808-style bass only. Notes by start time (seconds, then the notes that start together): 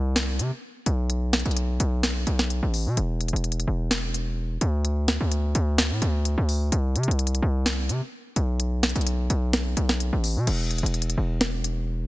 Already playing: C2
0.39 C3
0.86 B1
1.45 B1
1.80 B1
2.27 B1
2.63 A1
2.86 B2
2.97 E1
3.33 E1
3.67 E1
4.61 D2
5.21 D2
5.55 D2
5.91 A2
6.02 D2
6.38 D2
6.72 C2
6.96 C3
7.08 C2
7.42 C2
7.89 C3
8.36 B1
8.96 B1
9.30 B1
9.77 B1
10.13 A1
10.36 B2
10.47 E1
10.83 E1
11.18 E1